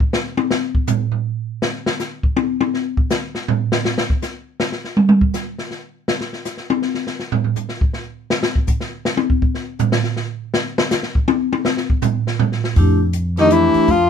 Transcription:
0.00 kick
0.13 snare
0.37 high tom
0.51 snare
0.75 kick
0.87 floor tom, hi-hat pedal
1.12 floor tom
1.62 snare
1.86 snare
1.99 snare, hi-hat pedal
2.23 kick
2.37 high tom
2.61 high tom
2.74 snare
2.97 kick
3.10 snare, hi-hat pedal
3.35 snare
3.48 floor tom
3.72 snare
3.85 snare
3.98 snare
4.10 kick
4.22 snare, hi-hat pedal
4.60 snare
4.72 snare
4.84 snare
4.97 mid tom
5.09 mid tom
5.21 kick
5.34 snare, hi-hat pedal
5.59 snare
5.71 snare
6.08 snare
6.21 snare
6.33 snare
6.45 snare, hi-hat pedal
6.57 snare
6.70 high tom
6.82 snare
6.94 snare
7.07 snare
7.20 snare
7.32 floor tom
7.44 floor tom
7.56 floor tom, hi-hat pedal
7.69 snare
7.81 kick
7.93 snare
8.30 snare
8.43 snare
8.56 kick
8.67 kick, hi-hat pedal
8.81 snare
9.05 snare
9.17 high tom
9.30 kick
9.42 kick
9.55 snare
9.79 floor tom, hi-hat pedal
9.92 snare
10.04 snare
10.17 snare
10.54 snare
10.78 snare
10.91 snare, hi-hat pedal
11.03 snare
11.15 kick
11.28 high tom
11.53 high tom
11.65 snare
11.77 snare
11.90 kick
12.02 floor tom, hi-hat pedal
12.27 snare
12.39 floor tom
12.52 snare
12.64 snare
12.76 F2 A3 D4 E4 G4, kick, open hi-hat
13.13 closed hi-hat
13.37 D#3 A3 D4 D#4 E4 G4, snare, open hi-hat
13.51 E3 E4, closed hi-hat
13.74 muted upright bass stroke, open hi-hat
13.88 F2 F3 F4, kick, open hi-hat

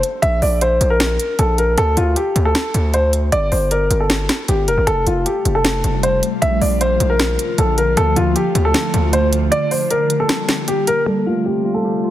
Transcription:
Already playing: A#3 D4
0.03 closed hi-hat
0.22 A#1 E5, closed hi-hat
0.42 A#1 D5, open hi-hat
0.61 C5, closed hi-hat
0.81 A#1, closed hi-hat
0.90 A#4
1.00 snare, closed hi-hat
1.19 closed hi-hat
1.39 A#1 A4, closed hi-hat
1.58 A#4, closed hi-hat
1.78 D2 A4, closed hi-hat
1.97 D2 F4, closed hi-hat
2.16 G4, closed hi-hat
2.36 D2, closed hi-hat
2.45 A4
2.55 snare, closed hi-hat
2.74 D2, closed hi-hat
2.94 C5, closed hi-hat
3.13 closed hi-hat
3.32 G1 D5, closed hi-hat
3.52 G1 C5, open hi-hat
3.71 A#4, closed hi-hat
3.90 G1, closed hi-hat
4.00 A4
4.10 snare, closed hi-hat
4.29 snare, closed hi-hat
4.48 G1 G4, closed hi-hat
4.68 F1 A#4, closed hi-hat
4.78 G1
4.87 F1 C3 G3 A3 F4 A4, closed hi-hat
5.07 F1 F4, closed hi-hat
5.26 G4, closed hi-hat
5.45 F1, closed hi-hat
5.55 A4
5.65 snare, closed hi-hat
5.84 F1, closed hi-hat
6.03 C5, closed hi-hat
6.23 closed hi-hat
6.42 A#1 D3 F3 A#3 E5, closed hi-hat
6.61 A#1 D5, open hi-hat
6.81 C5, closed hi-hat
7.00 A#1, closed hi-hat
7.10 A#4
7.20 snare, closed hi-hat
7.39 closed hi-hat
7.58 A#1 A4, closed hi-hat
7.78 A#4, closed hi-hat
7.97 D2 A3 F4 A4, closed hi-hat
8.16 D2 F4, closed hi-hat
8.36 G4, closed hi-hat
8.55 D2, closed hi-hat
8.65 A4
8.74 snare, closed hi-hat
8.94 D2, closed hi-hat
9.13 C5, closed hi-hat
9.33 closed hi-hat
9.52 G3 A#3 G4 D5, closed hi-hat
9.71 C5, open hi-hat
9.91 A#4, closed hi-hat
10.10 closed hi-hat
10.20 A4
10.29 snare, closed hi-hat
10.49 snare, closed hi-hat
10.68 G4, closed hi-hat
10.87 A#4, closed hi-hat
11.06 C3 G3 A3 F4 A4
11.26 A3 F4
11.45 C4 G4
11.64 F4
11.74 A4
11.85 G4
12.04 F4

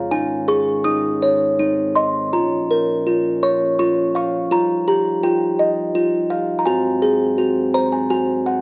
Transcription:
Already playing: F4 C#5 F5
0.11 G#2 D#3 C#4 D#4 G#5
0.48 G#4 C#6
0.84 D#4 D#6
1.22 C#5
1.58 C4 D#4
1.95 D#5 C6
2.33 A#2 F3 C#4 F4 A#5
2.71 A#4
3.07 F4
3.43 C#5 C#6
3.79 F4 C#6
4.15 F5 C#6
4.51 G3 D#4 F4 A#5
4.88 G4 A#5
5.23 F4 G5
5.59 D#5
5.95 F4
6.30 F5
6.59 A#5
6.66 G#2 F#3 C4 F#4 G#5
7.02 G#4
7.38 F#4
7.74 C5 A#5
7.92 G#5
8.10 F#4 G#5
8.46 F#5

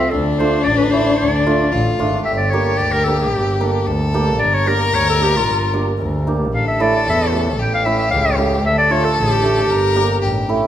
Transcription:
Already playing: C4 E5
0.10 D2 D4 A4
0.38 A3 D4 F4 C5
0.64 A1 D5
0.77 B4
0.90 A3 D4 E4 C5
1.17 D2 D5
1.46 A3 D4 F4
1.72 A1 F4
1.99 G#1 A3 D4 F4
2.25 G1 G4 E5
2.35 D5 E5
2.50 A#3 D4 G4 C#5
2.65 C#5
2.78 D2 D5
2.92 A#4
3.04 A#3 D4 G4 A4
3.19 G4
3.34 G1
3.61 A#3 D4 A4
3.87 D2 A4
4.14 A#3 D4 G4
4.39 G1 A#4 D5
4.54 C#5
4.66 A#3 D4 G4 A#4
4.82 A#4
4.92 D2 C#5
5.09 A4
5.20 A#3 D4 G4
5.24 G4
5.36 F4
5.46 G1
5.73 A#3 D4 G4
5.98 D2
6.27 A#3 D4 G4
6.52 A1 A4 F5
6.67 E5
6.80 A3 C#4 E4 D5
6.96 D5
7.06 E2 E5
7.32 A3 C#4 G4
7.59 A1 G4 G5
7.74 F5
7.85 A3 C#4 E4 E5
7.99 E5
8.11 C#2 F5
8.38 A3 C#4 G4
8.65 D2 A4 E5
8.78 D5
8.90 A3 D4 F4 C#5
9.05 A4
9.17 A1 G4
9.43 A3 D4 G4
9.69 G1 A#4
9.95 A#3 D4 G4
10.22 A1 G4
10.49 A3 C#4 E4

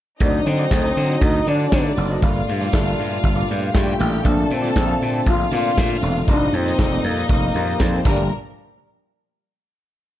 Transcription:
0.20 D2 D3 F#3 A3 C4 D4 D#4 F#4 C5 D5 D#5, kick, closed hi-hat
0.34 closed hi-hat
0.46 D3 C4, muted clean electric guitar stroke, closed hi-hat
0.58 D#4 F#4 C5 D5, closed hi-hat
0.71 D2 D3 F#3 C4 D#4, muted clean electric guitar stroke, kick, snare
0.84 D#4 F#4 C5 D#5
0.97 D3, muted clean electric guitar stroke, open hi-hat
1.09 muted clean electric guitar stroke, closed hi-hat
1.21 D2 D#4, muted clean electric guitar stroke, kick, closed hi-hat
1.35 muted clean electric guitar stroke, closed hi-hat
1.47 D3 D4 D#4 F#4 C5 D5, closed hi-hat
1.59 D#4 F#4 C5 D5, closed hi-hat
1.72 D3 F#3 C4 D#4, muted clean electric guitar stroke, kick, snare
1.86 muted clean electric guitar stroke
1.97 F#1 D#4 F#4 C5 D5, open hi-hat
2.10 D#4 F#4 C5 D#5, closed hi-hat
2.22 G1 A#2 D3 G3 A3 A#3 F4 A4 D5 F5, kick, closed hi-hat
2.35 closed hi-hat
2.48 G2, muted clean electric guitar stroke, closed hi-hat
2.60 A#3 F4 A4 D5, snare, closed hi-hat
2.73 G1 A#2 G3 A3 D4, kick, snare
2.86 A#3 F4 A4 F5, closed hi-hat
2.98 G2, muted clean electric guitar stroke, open hi-hat
3.10 muted clean electric guitar stroke, closed hi-hat
3.24 G1, muted clean electric guitar stroke, kick, closed hi-hat
3.36 A#3 F4 A4 D5
3.48 G2 A#3 F4 A4 D5, closed hi-hat
3.62 muted clean electric guitar stroke, closed hi-hat
3.74 G2 A#2 G3 A3 F4 G4 G5, muted clean electric guitar stroke, kick, snare
3.87 muted clean electric guitar stroke
4.00 A1 A#3 F4 A4 D5, open hi-hat
4.12 A#3 F4 A4 F5, closed hi-hat
4.24 A#1 A#2 C3 D3 F3 A3 C4 D4 F4 A4 D5 A5, kick, closed hi-hat
4.37 closed hi-hat
4.50 A#2 C4, muted clean electric guitar stroke, closed hi-hat
4.62 C4 F4 A4 D5, snare, closed hi-hat
4.75 A#1 A#2 D3 A3 C4, muted clean electric guitar stroke, kick, snare
4.87 C4 F4 A4 F5, closed hi-hat
5.00 A#2, muted clean electric guitar stroke, open hi-hat
5.13 muted clean electric guitar stroke, closed hi-hat
5.26 A#1 F4 F5, muted clean electric guitar stroke, kick, closed hi-hat
5.39 muted clean electric guitar stroke
5.51 A#2 C4 F4 A4 D5, closed hi-hat
5.65 C4 F4 A4 D5, closed hi-hat
5.76 A#2 D3 A3 C4, kick, snare
5.90 muted clean electric guitar stroke
6.02 E1 C4 F4 A4 D5, open hi-hat
6.15 C4 F4 A4 F5, closed hi-hat
6.27 F1 A#2 F3 G3 A#3 D4 D#4 G4 C5 D#5, kick, closed hi-hat
6.41 closed hi-hat
6.53 F2 C4, muted clean electric guitar stroke, closed hi-hat
6.66 A#3 D#4 G4 C5, snare, closed hi-hat
6.77 F1 A#2 F3 G3 A4, muted clean electric guitar stroke, kick, snare
6.92 A#3 D#4 G4 D5
7.04 F2 A#3, muted clean electric guitar stroke, open hi-hat
7.18 muted clean electric guitar stroke, closed hi-hat
7.29 F1, muted clean electric guitar stroke, kick, closed hi-hat
7.43 muted clean electric guitar stroke
7.55 F2 A#3 D#4 G4 C5, closed hi-hat
7.67 A#3 D#4 G4 C5, closed hi-hat
7.79 F2 A#2 F3 G3 C4 D#4 C5, muted clean electric guitar stroke, kick, snare
7.94 muted clean electric guitar stroke
8.05 G1 A#2 F3 G3 A3 A#3 D4 F4 A4 A#4 D5, kick, crash

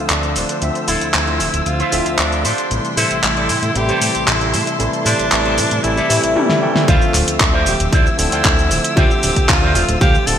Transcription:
Already playing: D3 F3 A3 C4 F4 C5 E6
0.10 D2 D4, clap, closed hi-hat, cabasa
0.22 muted clean electric guitar stroke, closed hi-hat, cabasa
0.35 D1 D4, muted clean electric guitar stroke, open hi-hat, cabasa
0.48 muted clean electric guitar stroke, closed hi-hat, cabasa
0.61 D2 D3 F3 A3 C4 E5 E6, closed hi-hat, cabasa
0.75 closed hi-hat, cabasa
0.87 D1 E4 F4 A4, open hi-hat, cabasa
1.01 closed hi-hat, cabasa
1.14 D2, clap, closed hi-hat, cabasa
1.26 E4 F4 C5, closed hi-hat
1.40 D1, open hi-hat, cabasa
1.53 D1, muted clean electric guitar stroke, closed hi-hat, cabasa
1.66 D2 F4, closed hi-hat, cabasa
1.79 E4 F4 C5, closed hi-hat, cabasa
1.92 D1 D3 F3 A3 C4 E5, open hi-hat, cabasa
2.06 D2, closed hi-hat, cabasa
2.18 D2 D4, clap, closed hi-hat, cabasa
2.31 muted clean electric guitar stroke, closed hi-hat, cabasa
2.44 A2 D4 G4 A4 C5 G5 C6, open hi-hat, cabasa
2.58 closed hi-hat, cabasa
2.70 A1 C3 E3 G3 A3 E4, closed hi-hat, cabasa
2.85 closed hi-hat, cabasa
2.96 A2 E4 G4 A4 C5, open hi-hat, cabasa
3.10 A1, closed hi-hat, cabasa
3.23 A1, clap, closed hi-hat, cabasa
3.36 G4 A4 D5, closed hi-hat
3.49 A2, open hi-hat, cabasa
3.62 A2, muted clean electric guitar stroke, closed hi-hat, cabasa
3.74 A1 C3 E3 G3 A3 E4 G4, closed hi-hat, cabasa
3.88 G4 A4 C5, closed hi-hat, cabasa
4.01 A2, open hi-hat, cabasa
4.15 A1, closed hi-hat, cabasa
4.28 A1 E4, clap, closed hi-hat, cabasa
4.40 muted clean electric guitar stroke, closed hi-hat, cabasa
4.53 A2 E4 A5, muted clean electric guitar stroke, open hi-hat, cabasa
4.66 muted clean electric guitar stroke, closed hi-hat, cabasa
4.79 A1 C3 E3 G3 A3 E4, closed hi-hat, cabasa
4.93 closed hi-hat, cabasa
5.05 A2 D4 G4 A4 C5, open hi-hat, cabasa
5.19 A1, closed hi-hat, cabasa
5.31 A1 C3 E3 G3 A3 E4, clap, closed hi-hat, cabasa
5.44 G4 A4 C5, closed hi-hat
5.58 A2, open hi-hat, cabasa
5.71 A2, muted clean electric guitar stroke, closed hi-hat, cabasa
5.82 A1 C3 E3 G3 A3 E4, closed hi-hat, cabasa
5.96 G4 A4 D5, closed hi-hat, cabasa
6.09 A2 C3 E3 G3 A3 E4, open hi-hat, cabasa
6.24 A1, closed hi-hat, cabasa
6.35 C3 E3 G3 A3 E4 E5, high tom
6.50 snare
6.61 C3 E3 G3 A3 E4 G5
6.76 snare
6.87 D2 D3 F3 C4 F4 C5 D5 E5 E6, kick, closed hi-hat, cabasa
7.02 cabasa
7.14 D1, muted clean electric guitar stroke, clap, open hi-hat, cabasa
7.28 D2, closed hi-hat, cabasa
7.40 D2, kick, clap, closed hi-hat, cabasa
7.53 F4 C5 D5 E5
7.66 D1 G4, open hi-hat, cabasa
7.80 D1, closed hi-hat, cabasa
7.92 D2 E4 F4 C5 D5 E5, kick, closed hi-hat, cabasa
8.06 cabasa
8.17 D1 D3 F3 A3 C4 D4 E4, muted clean electric guitar stroke, open hi-hat, cabasa
8.31 D2 F4 C5 D5 G5, closed hi-hat, cabasa
8.45 D2, kick, clap, closed hi-hat, cabasa
8.59 cabasa
8.71 D1, open hi-hat, cabasa
8.84 closed hi-hat, cabasa
8.96 D2 D3 F3 A3 C4 F4 G4 C5 D5 E5, kick, closed hi-hat, cabasa
9.11 cabasa
9.22 D1, muted clean electric guitar stroke, open hi-hat, cabasa
9.36 D2, kick, closed hi-hat, cabasa
9.49 D2 F4, kick, clap, closed hi-hat, cabasa
9.62 F4 C5 D5 E5
9.75 D1 F4, open hi-hat, cabasa
9.89 D1, closed hi-hat, cabasa
10.00 D2 F4 G4 C5 D5 F5, kick, closed hi-hat, cabasa
10.15 cabasa
10.27 D1 D3 F3 A3 C4 A4, muted clean electric guitar stroke, open hi-hat, cabasa

